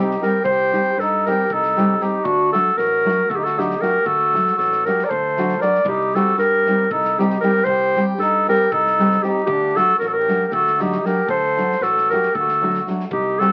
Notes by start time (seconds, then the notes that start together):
Already playing: C2 G3 C4 D#4
0.00 D#4 G4
0.10 snare
0.21 G3 C4 D#4 G4 A#4, snare
0.44 C2 C5, kick
0.50 G4
0.72 G3 C4 D#4 G4, snare
0.97 G2 A4, snare
1.02 D#4
1.26 G3 C4 D#4 G4 A#4, snare
1.50 C2 D#4 A4, kick
1.63 snare
1.77 G3 C4 D#4 G4, snare
2.00 G3 C4 D#4 G4, snare
2.24 D2 D4 F#4, kick
2.52 F#3 A3 D4 F#4 A4, snare
2.77 A1 F#4 A#4, snare
3.05 F#3 A3 D4 F#4, snare
3.30 D2 F#4 A4, kick
3.36 D#4 G4
3.43 F#4 A4, snare
3.57 F#3 A3 D4 D#4 F#4 G4, snare
3.70 snare
3.80 F#3 A3 D4 F#4 G4 A#4, snare
4.04 D2 F#4 A4, kick
4.33 F#3 A3 D4 F#4, snare
4.47 snare
4.56 A1 F#4 A4, snare
4.72 snare
4.85 F#3 A3 D4 F#4 G4 A#4, snare
4.99 snare
5.04 A4 A#4 D5
5.10 D2 C5, kick
5.37 F#3 A3 D4 F#4, snare
5.49 snare
5.58 F#3 A3 A#4 D5, snare
5.63 D4 F#4
5.75 snare
5.85 C2 D#4 G4, kick
6.15 G3 C4 D#4 F#4 G4 A4, snare
6.38 G2 G4 A#4, snare
6.66 G3 C4 D#4 G4, snare
6.91 C2 D#4 A4, kick
7.04 snare
7.18 G3 C4 D#4 G4, snare
7.30 snare
7.41 G3 C4 D#4 G4 A#4, snare
7.64 C2 C5, kick
7.69 G4
7.96 G3 C4 D#4 G4, snare
8.18 G2 A4, snare
8.22 D#4
8.47 G3 C4 D#4 G4 A#4, snare
8.51 G4
8.71 C2 D#4 A4, kick
8.86 snare
8.99 G3 C4 D#4 G4, snare
9.11 snare
9.23 G3 C4 D#4 G4, snare
9.27 D#4
9.46 D2 G4, kick
9.51 D4
9.75 F#3 A3 D4 F#4 A4, snare
9.99 A1 A#4, snare
10.03 F#4
10.08 F#4 A4
10.13 A#4
10.19 G4
10.28 F#3 A3 D4 F#4, snare
10.46 G4 A#4
10.52 D2 F#4 A4, kick
10.67 snare
10.79 F#3 A3 D4 D#4 F#4 G4, snare
10.92 snare
11.04 F#3 A3 D4 F#4 G4 A#4, snare
11.27 D2 A4 C5, kick
11.57 F#3 A3 D4 F#4, snare
11.72 snare
11.81 A1 F#4 A4, snare
11.97 snare
12.10 F#3 A3 D4 F#4 G4 A#4, snare
12.22 snare
12.34 D2 A4, kick
12.40 F#4
12.48 snare
12.62 F#3 A3 D4 F#4
12.74 snare
12.87 F#3 A3 D4 F#4, snare
13.00 snare
13.11 C2 D#4 G4, kick
13.39 G3 C4 D#4 F#4 G4 A4, snare